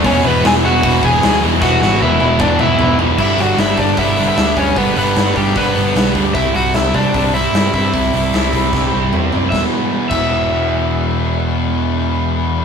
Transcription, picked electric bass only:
0.05 E1
0.25 E1
0.44 E1
0.65 E1
0.83 E1
1.03 E1
1.23 D2
1.44 E1
1.62 E1
1.83 G#1
2.02 E1
2.21 E1
2.40 E1
2.59 E1
2.79 E1
2.99 E1
3.19 G1
3.37 G1
3.58 G1
3.77 G2
3.97 G1
4.38 D2
4.57 D2
4.76 G1
4.97 G1
5.17 G1
5.35 G1
5.56 G1
5.77 G1
5.96 B1
6.15 D2
6.35 C2
6.56 C2
6.75 C2
6.95 C3
7.15 C2
7.54 G2
7.74 G2
7.93 C2
8.14 C2
8.34 C2
8.53 C2
8.73 C2
8.94 C2
9.13 E2
9.34 F#2
9.52 E1
10.11 E1

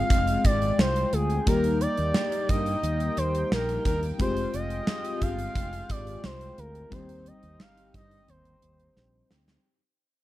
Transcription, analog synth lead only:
Already playing: F5
0.45 D5
0.79 C5
1.13 G#4
1.47 A#4
1.81 D5
2.50 D#5
3.18 C5
3.52 A#4
3.86 A#4
4.21 C5
4.54 D#5
5.22 F5
5.91 D5
6.25 C5
6.59 A#4
6.93 C5
7.27 D#5
7.61 F5
7.95 D#5
8.29 C5

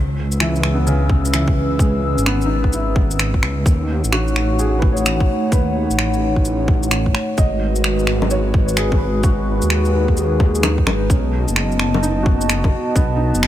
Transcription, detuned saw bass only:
Already playing: C#2
1.79 C#2
2.17 G#1
3.42 C#2
3.66 D#2
4.04 A1
5.52 D#2
5.90 A1
7.38 G#1
9.24 G#1
9.63 D#2
10.87 G#1
11.10 B1
11.48 F#1
12.95 B1
13.35 F#1

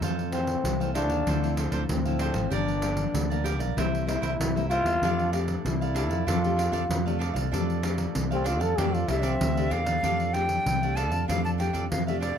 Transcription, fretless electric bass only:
0.01 F2
0.64 C2
1.09 D#2
1.27 D2
1.72 D2
1.89 D2
2.34 G#1
2.51 G1
3.14 D2
3.59 B1
3.77 C2
4.22 C2
4.40 C2
4.84 E2
5.02 F2
5.65 C2
6.10 F2
6.27 F2
6.72 F2
6.89 F2
7.35 C2
7.52 F2
8.15 C2
8.60 F2
8.78 F2
9.08 C2
9.41 D2
9.71 E2
10.03 F2
10.66 C2
11.11 F2
11.29 F2
11.74 F2
11.92 F2

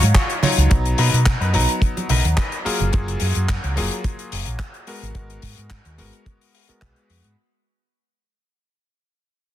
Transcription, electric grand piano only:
Already playing: F#3 D#4 C#5 F5
0.42 F#3 D#4 F4 C#5
0.70 F#3 B3 D#4 A#5
1.53 F#3 B3 D#4 A#5
2.65 F#3 A#3 F4 G#4
2.92 F#3 A#3 F4 G#4
3.76 F#3 A#3 F4 G#4
4.87 G#3 B3 F#4 A#4
5.14 G#3 B3 F#4 A#4
5.98 G#3 B3 F#4 A#4
6.68 G#3 B3 F#4 A#4
6.81 G#3 B3 F#4 B4

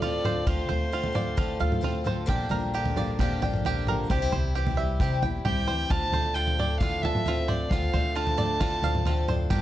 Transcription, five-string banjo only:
Already playing: D5 F5
0.02 F4
0.25 C5
0.47 F4
0.69 C5
0.93 F4
1.15 D5
1.38 F4
1.60 F5
1.84 F4
2.07 C5
2.29 G4
2.51 A#4
2.74 G4
2.97 D5
3.20 G4
3.42 G5
3.66 G4
3.88 A#4
4.11 G4
4.32 C5
4.55 G4
4.77 E5
5.01 G4
5.23 G5
5.45 G4
5.67 C5
5.91 F4
6.13 C5
6.36 F4
6.59 D5
6.82 F4
7.05 A5
7.28 F4
7.48 C5
7.72 F4
7.93 C5
8.16 F4
8.38 D5
8.60 F4
8.84 F5
9.07 F4
9.28 C5
9.50 G4

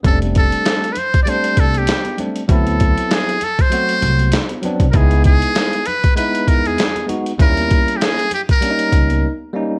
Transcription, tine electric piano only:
0.03 G3 A3 C4 C#4
0.13 D4
1.25 G3 A3 C4 D4
2.17 G3 A3 C4 D4
2.48 F#3 B3 C4 E4
3.70 F#3 A3 C4 F#4
4.62 F#3 B3 C4 D4
4.93 G#3 B3 D#4 E4
6.15 G#3 B3 D#4 E4
7.06 G#3 B3 D#4 F#4
7.38 G3 A#3 C#4 E4
8.61 G3 A#3 C#4 D4
8.70 D#4
9.53 G3 A#3 C#4 D#4

